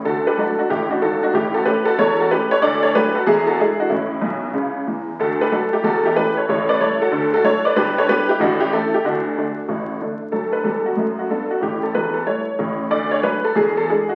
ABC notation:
X:1
M:4/4
L:1/8
Q:"Swing" 1/4=187
K:D
V:1 name="Honky-tonk piano"
[FA] [GB] [FA] [DF] [EG] [DF] [FA] [DF] | [EG] [FA] [GB] [FA] [Ac] [FA] [GB] [Ac] | [Ad] [Ac] [GB] [FA] [E^G] [FA] [EG] [DF] | [CE]6 z2 |
[FA] [GB] [FA] [EG] [FA] [EG] [GB] [Ac] | [Ac] [Bd] [Ac] [FA]2 [FA] [Ac] [Bd] | [GB] [Ac] [GB] [EG] [DF] [EG] [EA] [EG] | [DF]6 z2 |
A B A F2 F A F | G A B A c3 z | d c B A ^G A G F |]
V:2 name="Honky-tonk piano" clef=bass
[D,,D,]2 [F,A,D]2 [A,,,A,,]2 [^G,,,^G,,]2 | [A,,,A,,]2 [E,A,C]2 [E,,,E,,]2 [E,A,C]2 | [D,,D,]2 [F,A,D]2 [E,,,E,,]2 [E,^G,D]2 | [A,,,A,,]2 [B,,,B,,]2 [C,,C,]2 [E,,E,]2 |
[D,,D,]2 [F,A,D]2 [E,,,E,,]2 [E,A,C]2 | [A,,,A,,]2 [G,A,E]2 [D,,D,]2 [F,A,D]2 | [G,,,G,,]2 [G,B,D]2 [A,,,A,,]2 [E,A,C]2 | [D,,D,]2 [D,A,D]2 [A,,,A,,]2 [D,A,D]2 |
[D,,F,]2 [E,,G,]2 [F,,A,]2 [G,,B,]2 | [A,,,A,,]2 [E,,,E,,]2 [G,A,E]2 [A,,,A,,]2 | [D,,D,]2 [F,A,D]2 [E,,,E,,]2 [E,^G,D]2 |]